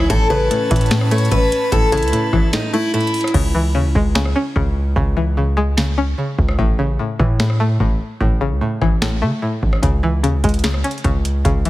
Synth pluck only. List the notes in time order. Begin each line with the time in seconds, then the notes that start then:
0.10 A2
0.30 C#3
0.51 A2
0.71 E3
0.91 A2
1.11 A3
1.31 A2
1.72 A2
1.92 C#3
2.13 A2
2.33 E3
2.53 A2
2.73 A3
2.94 A2
3.34 C#3
3.55 E3
3.75 C#3
3.96 G#3
4.15 C#3
4.36 C#4
4.56 C#3
4.96 C#3
5.17 E3
5.37 C#3
5.57 G#3
5.77 C#3
5.98 C#4
6.18 C#3
6.59 A2
6.79 C#3
6.99 A2
7.20 E3
7.40 A2
7.60 A3
7.80 A2
8.20 A2
8.41 C#3
8.61 A2
8.81 E3
9.02 A2
9.22 A3
9.42 A2
9.83 C#3
10.03 E3
10.23 C#3
10.44 G#3
10.64 C#3
10.84 C#4
11.04 C#3
11.45 C#3
11.65 E3